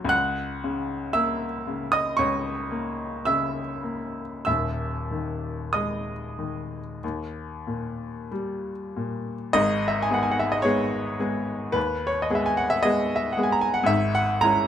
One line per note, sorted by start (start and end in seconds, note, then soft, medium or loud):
0.00 0.15 A#2 medium
0.00 0.14 F#3 medium
0.00 0.11 C#6 loud
0.05 2.10 C#2 medium
0.09 1.10 F#5 medium
0.09 1.14 F#6 loud
0.64 1.45 C#3 medium
1.13 1.97 A#3 medium
1.13 1.87 E5 medium
1.13 1.91 E6 medium
1.67 2.49 C#3 medium
1.92 2.16 D#5 medium
1.92 2.17 D#6 medium
2.17 4.42 C#2 medium
2.17 3.21 C#5 medium
2.17 3.24 C#6 medium
2.71 3.60 A#3 medium
3.25 4.21 C#3 medium
3.25 4.42 E5 medium
3.25 4.43 E6 medium
3.83 4.46 A#3 soft
4.45 6.99 D#1 medium
4.45 6.99 D#2 medium
4.45 5.70 E5 medium
4.45 5.73 E6 medium
5.11 6.12 D#3 soft
5.73 6.77 G#3 medium
5.73 8.27 D#5 medium
5.73 8.31 D#6 medium
6.39 7.03 D#3 soft
7.04 9.52 D#2 medium
7.67 8.69 A#2 soft
8.31 9.33 G3 soft
8.96 9.56 A#2 soft
9.53 10.09 G#1 medium
9.53 10.09 G#2 medium
9.53 9.88 D#5 loud
9.88 10.04 E5 medium
10.02 10.15 G#5 medium
10.10 10.62 G#3 medium
10.10 10.62 B3 medium
10.10 10.63 G#4 medium
10.10 10.24 F#5 medium
10.23 10.33 G#5 medium
10.31 10.42 F#5 medium
10.39 10.52 E5 medium
10.52 10.65 D#5 medium
10.62 11.17 G#3 medium
10.62 11.17 B3 medium
10.62 11.17 G#4 medium
10.62 11.74 C#5 loud
11.20 11.71 G#3 medium
11.20 11.71 B3 medium
11.20 11.71 G#4 medium
11.72 12.27 D#2 medium
11.72 12.07 B4 medium
12.07 12.25 C#5 medium
12.22 12.37 D#5 medium
12.30 12.80 G#3 medium
12.30 12.80 B3 medium
12.30 12.81 G#4 medium
12.35 12.47 E5 medium
12.46 12.57 G#5 medium
12.57 12.70 F#5 medium
12.70 12.84 E5 loud
12.83 13.33 G#3 medium
12.83 13.34 B3 medium
12.83 13.34 G#4 medium
12.83 13.15 D#5 loud
13.16 13.33 E5 medium
13.33 13.45 F#5 medium
13.37 13.86 G#3 medium
13.37 13.86 B3 medium
13.37 13.87 G#4 medium
13.43 13.54 G#5 medium
13.52 13.64 A#5 medium
13.61 13.75 G#5 medium
13.74 13.89 F#5 medium
13.83 14.39 G#2 medium
13.83 14.15 E5 loud
13.88 14.41 G#1 medium
14.15 14.43 F#5 loud
14.41 14.67 G#3 medium
14.41 14.67 C#4 medium
14.41 14.67 E4 medium
14.41 14.67 A#5 loud